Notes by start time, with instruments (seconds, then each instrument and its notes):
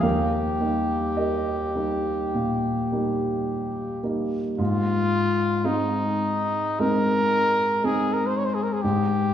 0.01 grand piano D#2 A#4 F5, trumpet G4
0.60 grand piano G3 A#3 D#4
1.17 grand piano G4 A#4 D#5
1.75 grand piano G3 A#3 D#4
2.34 grand piano A#2
2.92 grand piano G3 A#3 D#4
4.03 grand piano G3 A#3 D#4
4.58 grand piano G#2, trumpet F4
5.64 grand piano G#3 C4 D#4, trumpet D#4
6.79 grand piano G#3 C4 D#4, trumpet A#4
7.84 grand piano G#3 C4 D#4, trumpet G#4
8.13 trumpet A#4
8.27 trumpet C5
8.38 trumpet C#5
8.46 trumpet C5
8.54 trumpet G#4
8.63 trumpet A#4
8.73 trumpet G#4
8.82 grand piano G#2, trumpet G4